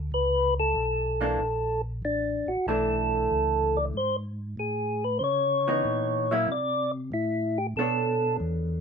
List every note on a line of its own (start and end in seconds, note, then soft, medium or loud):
0.00 0.11 D2 medium
0.12 0.74 C#2 medium
0.12 0.54 B4 medium
0.60 1.82 A4 medium
0.76 1.38 B1 medium
1.21 1.39 E3 medium
1.21 1.39 A#3 medium
1.21 1.39 D4 medium
1.40 2.02 A#1 medium
2.02 2.44 A1 medium
2.02 2.50 D4 medium
2.47 2.57 A1 soft
2.47 2.66 F#4 medium
2.66 3.29 B1 medium
2.66 3.95 E3 medium
2.66 3.95 A3 medium
2.66 3.96 D4 medium
2.66 3.79 A4 medium
3.31 3.93 C#2 medium
3.77 3.85 D5 medium
3.94 4.56 G#2 medium
3.94 4.16 C5 medium
4.57 5.20 A2 medium
4.57 5.04 G#4 medium
5.04 5.18 B4 medium
5.19 5.83 C#3 medium
5.19 5.23 C5 medium
5.24 6.34 C#5 medium
5.68 6.26 E3 medium
5.68 6.26 B3 medium
5.68 6.27 D#4 medium
5.85 6.47 A#2 medium
6.31 6.48 F#3 medium
6.31 6.49 A#3 medium
6.31 6.49 E4 medium
6.31 6.49 E5 medium
6.48 7.10 C3 medium
6.48 6.91 D5 medium
7.12 7.74 A2 medium
7.12 7.59 E4 medium
7.58 7.67 G4 medium
7.76 8.38 B2 medium
7.76 8.81 B3 soft
7.76 8.81 D4 soft
7.76 8.37 A4 medium
7.76 8.81 A4 medium
7.76 8.81 C#5 soft
8.40 8.81 E2 medium